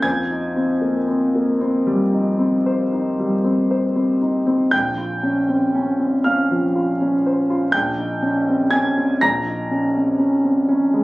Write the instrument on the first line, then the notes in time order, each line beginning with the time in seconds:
grand piano
0.02 F2 G#5 G#6
0.31 D#4
0.56 C4
0.82 A#3
1.08 C4
1.35 A#3
1.61 C4
1.87 G3
2.12 D#4
2.39 C4
2.66 C5
2.92 D#4
3.19 G3
3.44 C4
3.71 C5
3.96 C4
4.21 D#4
4.46 C4
4.71 A#1 G5 G6
4.98 F4
5.23 C#4
5.49 C4
5.75 C#4
5.99 C4
6.24 C#4 F5 F6
6.51 F3
6.75 F4
7.01 C#4
7.26 C5
7.50 F4
7.72 A#1 G5 G6
7.98 D#4
8.22 C#4
8.49 C4
8.71 C#4 G#5 G#6
8.97 C4
9.21 A#1 A#5 A#6
9.47 D#4
9.71 C#4
9.96 C4
10.19 C#4
10.44 C4
10.69 C#4
10.94 G#3